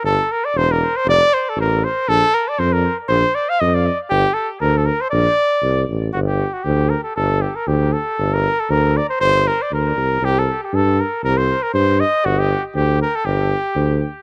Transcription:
X:1
M:2/4
L:1/16
Q:"Swing 16ths" 1/4=118
K:Bb
V:1 name="Cornet"
A2 B d c B2 c | d2 c A B2 c2 | A2 B d c B2 z | c2 d f e d2 z |
G2 A z B A B c | d6 z2 | [K:Gm] ^F G2 F G2 B A | A2 G B G2 A2- |
A B2 A B2 d c | c2 B d B4 | G A2 G A2 B2 | B c2 B c2 e2 |
^F G2 z G2 B A | G6 z2 |]
V:2 name="Tuba" clef=bass
G,,,2 z2 =E,,,4 | F,,,2 z2 A,,,4 | B,,,2 z2 F,,4 | B,,,2 z2 F,,4 |
G,,,2 z2 D,,4 | B,,,2 z2 C,,2 A,,,2 | [K:Gm] G,,,4 D,,4 | G,,,4 D,,4 |
G,,,4 D,,4 | G,,,4 D,,2 C,,2 | C,,4 G,,4 | C,,4 G,,4 |
G,,,4 D,,4 | G,,,4 D,,4 |]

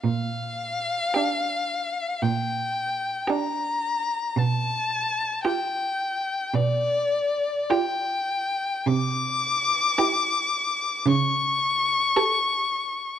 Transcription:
X:1
M:4/4
L:1/8
Q:1/4=55
K:Gdor
V:1 name="Violin"
f4 g2 b2 | a2 g2 d2 g2 | d'4 ^c'4 |]
V:2 name="Violin"
z2 G2 z2 G2 | z2 G2 z2 G2 | z2 G2 z2 A2 |]
V:3 name="Viola"
z2 D2 z2 D2 | z2 F2 z2 F2 | z2 E2 z2 G2 |]
V:4 name="Cello" clef=bass
B,,2 z2 B,,2 z2 | =B,,2 z2 B,,2 z2 | C,2 z2 ^C,2 z2 |]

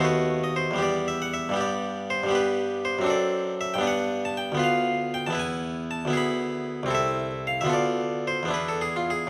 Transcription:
X:1
M:6/8
L:1/16
Q:3/8=78
K:G
V:1 name="Harpsichord"
B3 ^d c2 =d2 e f e2 | d4 c2 B4 c2 | d4 e g f3 a g2 | [K:Ephr] f4 g a ^g4 a2 |
b6 e4 f e | d4 c2 B A ^G F G2 |]
V:2 name="Harpsichord"
[^D,,A,B,F]6 [E,,G,B,G]6 | [G,,G,B,G]6 [G,,G,B,G]6 | [F,,CDA]6 [G,,B,DB]6 | [K:Ephr] [D,,B,FB]6 [E,,B,EB]6 |
[D,,B,E^G]6 [C,,CEA]6 | [D,,B,FA]6 [E,,B,DE]6 |]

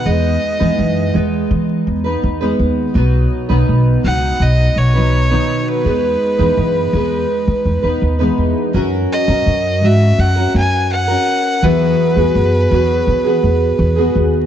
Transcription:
X:1
M:4/4
L:1/16
Q:1/4=83
K:Elyd
V:1 name="Fiddle"
d6 z8 z2 | z6 f2 d2 c4- c B- | B12 z4 | z2 d4 e2 f2 g2 f4 |
B12- B2 z2 |]
V:2 name="Steel-string acoustic guitar"
[G,B,DB]3 [E,G,B,DB]3 [G,B,DB]4- [G,B,DB] [B,DB]2 [G,B,DB]3 | [F,B,DB]3 [B,,D,F,B,DB]3 [F,B,DB]4- [F,B,DB] [F,B,DB]2 [B,,D,F,B,DB]3 | [G,B,DB]3 [E,G,B,DB]3 [G,B,DB]4- [G,B,DB] [B,DB]2 [E,G,B,DB]3 | [F,CFA]3 [CFA]3 [F,CFA]3 [CFA]4 [CFA]3 |
[E,F,B,FG]3 [B,FG]3 [F,B,FG]3 [B,FG]4 [B,FG]3 |]
V:3 name="Upright bass" clef=bass
E,,2 z E,, F,,2 E,,2 E,2 E,,2 E,,2 D,,2 | B,,,2 z B,,, B,,,2 C,,2 B,,,2 B,,,4 z2 | E,,2 z E,, F,,2 E,,2 z E, E,, E,, D,,2 E,, z | F,,2 z F,, F,,2 G,,2 F,,2 F,,4 z2 |
E,,2 z E,, F,,2 E,,2 E,2 E,,2 E,,2 D,,2 |]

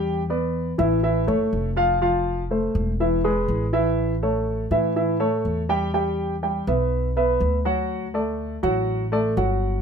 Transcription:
X:1
M:4/4
L:1/8
Q:1/4=122
K:Edor
V:1 name="Grand piano"
[G,Gg] [B,Bd]2 [E,Ee] [E,Ee] [A,Ac]2 [=F,=F=f] | [=F,=F=f]2 [A,A=c]2 [E,Ee] [^G,^GB]2 [E,Ee]- | [E,Ee] [A,Ac]2 [E,Ee] [E,Ee] [A,Ac]2 [G,Gg] | [G,Gg]2 [G,Gg] [B,Be]2 [B,Be]2 [F,Ff]- |
[F,Ff] [A,Ad]2 [F,Ff]2 [A,Ad] [F,Ff]2 |]
V:2 name="Upright bass" clef=bass
E,,3 A,,,2 F,,, =F,,,2- | =F,,,3 E,,,3 A,,,2- | A,,,3 A,,3 E,,2- | E,,3 B,,,3 D,,2- |
D,,3 A,,,3 G,,,2 |]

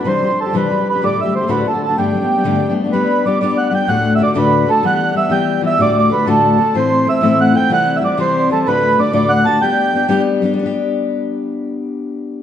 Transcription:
X:1
M:6/8
L:1/16
Q:3/8=126
K:G
V:1 name="Accordion"
c4 A2 B4 B2 | d2 e2 c2 B2 A2 A2 | G8- G2 z2 | B4 d2 d2 f3/2 f/2 g2 |
f3 e d2 B4 A2 | f4 e2 g4 e2 | d2 d2 B2 A6 | c4 e2 e2 f2 g2 |
f3 e d2 c4 A2 | B4 d2 d2 f2 a2 | g8 z4 | z12 |
z12 |]
V:2 name="Steel-string acoustic guitar"
[C,E,G,DG]2 [E,G,DG] [DG]2 [G,DG] [C,E,G,DG]2 [E,G,DG] [G,DG]2 [G,DG] | [D,,A,,D,G,A,G]2 [D,G,A,G] [D,G,A,G]2 [D,G,A,G] [D,,A,,D,A,DF]2 [D,A,DF] [D,A,DF]2 [D,A,DF] | [G,,D,G,A,B,D]2 [G,A,B,D] [G,A,B,D]2 [G,A,B,D] [G,,D,G,A,B,D]2 [G,A,B,D] [G,A,B,D]2 [G,A,B,D] | [G,B,DG]4 [G,B,DG]2 [G,B,DG]4 [G,B,DG]2 |
[D,,A,,D,A,DF]4 [D,A,DF]2 [D,,A,,D,A,DF]4 [D,A,DF]2 | [E,G,B,G]4 [E,G,B,G]2 [E,G,B,G]4 [E,G,B,G]2 | [D,,A,,D,A,DF]4 [D,A,DF]2 [D,,A,,D,A,DF]4 [D,A,DF]2 | [A,,E,A,CE]4 [E,A,CE]2 [A,,E,A,CE]4 [E,A,CE]2 |
[C,E,G,CE]4 [E,G,CE]2 [C,E,G,CE]4 [E,G,CE]2 | [D,,A,,D,A,DF]4 [D,A,DF]2 [D,,A,,D,A,DF]4 [D,A,DF]2 | [G,B,DG]4 [G,B,DG]2 [G,B,DG]4 [G,B,DG]2 | [G,B,DG]12- |
[G,B,DG]12 |]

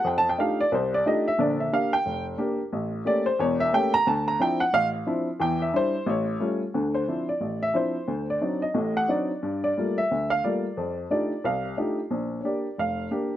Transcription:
X:1
M:4/4
L:1/8
Q:"Swing" 1/4=179
K:Dm
V:1 name="Upright piano"
(3g a g f d c d _e =e | d e f g2 z3 | z2 d c ^c e g b | a b g ^f =f z3 |
g e c2 ^c3 z | z c2 d2 e c2- | c d2 _e2 ^f d2- | d d2 e2 f d2- |
d z d2 f2 z2 | z2 [^cd]2 f2 z2 |]
V:2 name="Upright piano"
F,,2 [A,D_EFG] z C,,2 [A,DEFG] z | [B,,,D,]2 [B,DG] z F,,,2 [B,DG] z | A,,,2 [A,B,^CG] z [E,,,E,,]2 [A,B,CG] z | D,,2 [F,CDE] z A,,,2 [F,CDE] z |
[E,,E,]2 [G,DE] z A,,,2 [G,A,^C^E] z | [D,,D,]2 [F,CDE] z A,,,2 [F,CDE] z | D,,2 [^F,CD_E] z [A,,,A,,]2 [F,CDE] z | G,,2 [G,A,B,F] z D,,2 [G,A,B,F] z |
F,,2 [A,D_EFG] z C,,2 [A,DEFG] z | B,,,2 [B,DG] z F,,,2 [B,DG] z |]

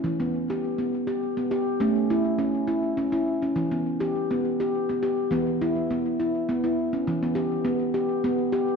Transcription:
X:1
M:3/4
L:1/16
Q:"Swing 16ths" 1/4=103
K:none
V:1 name="Handpan"
z B,2 G2 B,2 G2 B, G2 | ^C2 E2 C2 E2 C E2 C | z B,2 G2 B,2 G2 B, G2 | B,2 E2 B,2 E2 B, E2 ^C |
z B, G2 B,2 G2 B,2 G2 |]
V:2 name="Handpan" clef=bass
E,12 | A,12 | E,12 | E,12 |
E,12 |]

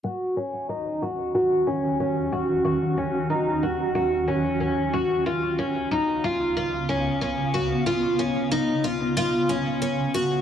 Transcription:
X:1
M:4/4
L:1/8
Q:1/4=92
K:Ebm
V:1 name="Twelve-string acoustic guitar"
G D E G G D D G | G D E G G D D G | F D E F F D D G | F D E F F D D G |]
V:2 name="Ambient pad" clef=bass
[E,,E,DG]8- | [E,,E,DG]8 | [D,,D,Cf]8- | [D,,D,Cf]8 |]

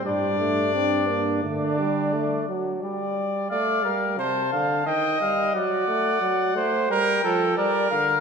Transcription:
X:1
M:4/4
L:1/8
Q:1/4=88
K:Gm
V:1 name="Trumpet"
d4 d3 z | d2 f2 a2 g f | ^f4 g2 d =f |]
V:2 name="Trumpet"
D4 D3 z | z2 d B c f e2 | d3 c B A B2 |]
V:3 name="Trombone" clef=bass
G, A, C B, A, G, A, ^F, | G,2 A, G, C, D, E, G, | ^F, A, F, A, G, =F, G, D, |]
V:4 name="Bass trombone" clef=bass
G,,4 D,3 z | z8 | z8 |]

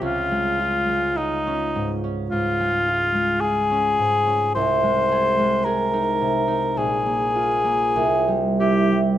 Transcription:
X:1
M:4/4
L:1/16
Q:1/4=53
K:Dblyd
V:1 name="Cor anglais"
F4 E3 z F4 A4 | c4 B4 A6 G2 |]
V:2 name="Harp"
[D,,A,F] A, F A, F D A,, D A,, A, F A, F D A,, D | C,, A, A A, A E C, E B,,, B, F B, C,, G, =E G, |]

